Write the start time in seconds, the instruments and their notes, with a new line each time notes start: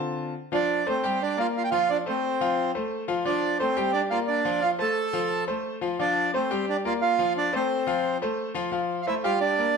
Already playing: grand piano D3 C4 F4 A5
0.52 grand piano F3 F4 F5, accordion D4 D5
0.86 grand piano A3 A4 C5, accordion C4 C5
1.03 grand piano G3 G4 G5
1.22 accordion D4 D5
1.37 grand piano A#3 A#4 D5, accordion F4 F5
1.57 accordion F4 F5
1.64 accordion G5
1.71 grand piano F3 F4 F5, accordion F4 F5
1.90 accordion D4 D5
2.06 grand piano A3 A4 C5, accordion C4 C5
2.41 grand piano F3 F4 F5
2.75 grand piano A3 A4 C5
3.08 grand piano F3 F4 F5
3.25 grand piano F3 F4 F5, accordion D4 D5
3.59 grand piano A3 A4 C5, accordion C4 C5
3.77 grand piano G3 G4 G5
3.93 accordion D4 D5
4.10 grand piano A#3 A#4 D5, accordion F4 F5
4.27 accordion D4 D5
4.45 grand piano F3 F4 F5
4.62 accordion F4 F5
4.78 grand piano A3 A4 C5, accordion A4 A5
5.13 grand piano F3 F4 F5
5.47 grand piano A3 A4 C5
5.81 grand piano F3 F4 F5
5.99 grand piano F3 F4 F5, accordion D4 D5
6.34 grand piano A3 A4 C5, accordion C4 C5
6.51 grand piano G3 G4 G5
6.69 accordion D4 D5
6.85 grand piano A#3 A#4 D5, accordion F4 F5
7.02 accordion F4 F5
7.19 grand piano F3 F4 F5
7.37 accordion D4 D5
7.52 grand piano A3 A4 C5, accordion C4 C5
7.87 grand piano F3 F4 F5
8.22 grand piano A3 A4 C5
8.54 grand piano F3 F4 F5
8.72 grand piano F3 F4 F5
9.02 accordion F5
9.07 grand piano A3 A4 C5, accordion E4 E5
9.24 grand piano G3 G4 G5, accordion F4 F5
9.40 accordion D4 D5
9.58 grand piano A#3 A#4 D5